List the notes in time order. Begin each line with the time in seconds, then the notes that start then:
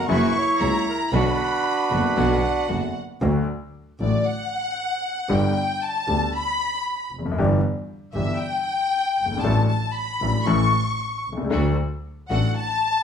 0.07 F#1 F#2 C#3 F#3 A#3 E4 F#4 B4 C#6
0.38 C#5
0.59 C#2 C#3 F#3 A#3 E4 F#4 C#5 A#5
0.90 A#4
1.12 B1 B2 D3 F#3 B3 D4 F#4 B4 B5
1.90 F#1 F#2 D3 F#3 B3 D4 F#4
2.16 B1 B2 D3 F#3 B3 D4 F#4 F#5
2.68 F#1 F#2 D3 F#3 B3 D4 F#4
3.21 D2 D3 F#3 A3 F#4
4.00 A1 A2 D3 F#3 A3 F#4 D5
4.27 F#5
5.29 G1 G2 D3 G3 B3 G4 G5
5.83 A5
6.07 D2 D3 G3 B3 G4
6.35 B5
7.11 F1
7.18 E2
7.25 F2
7.32 F#2
7.37 G1 G2 E3 B3 D4 G4
8.14 G1 G2 E3 B3 D4 G4 E5
8.38 G5
9.18 G1
9.25 F#1
9.31 G1
9.37 G#1
9.41 A1 A2 F#3 A3 D4 A4 A5
9.68 A5
9.93 B5
10.21 A1 A2 F#3 A3 D4 A4
10.46 A1 A2 E3 A3 C#4 A4 C#6
11.27 C2
11.32 B1
11.37 C2
11.44 C#2
11.50 D2 D3 F#3 A3 D4 F#4 A4
12.30 A1 A2 F#3 A3 D4 F#4 A4 F#5
12.56 A5